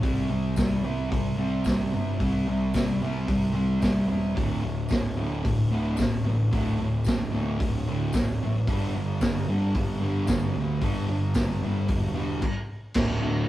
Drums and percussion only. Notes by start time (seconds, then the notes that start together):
0.03 kick, open hi-hat
0.56 kick, snare, open hi-hat, tambourine
1.12 kick, open hi-hat
1.64 kick, snare, open hi-hat, tambourine
2.20 kick, open hi-hat
2.74 kick, snare, open hi-hat, tambourine
3.28 kick, open hi-hat
3.82 kick, snare, open hi-hat, tambourine
4.37 kick, open hi-hat
4.89 kick, snare, open hi-hat, tambourine
5.45 kick, open hi-hat
5.97 kick, open hi-hat, tambourine
6.01 snare
6.53 kick, open hi-hat
7.04 kick, snare, open hi-hat, tambourine
7.60 kick, open hi-hat
8.13 kick, snare, open hi-hat, tambourine
8.67 kick, open hi-hat
9.21 kick, snare, open hi-hat, tambourine
9.75 kick, open hi-hat
10.27 kick, snare, open hi-hat, tambourine
10.81 kick, open hi-hat
11.34 kick, snare, open hi-hat, tambourine
11.88 kick, open hi-hat
12.42 kick, crash
12.94 kick, snare, crash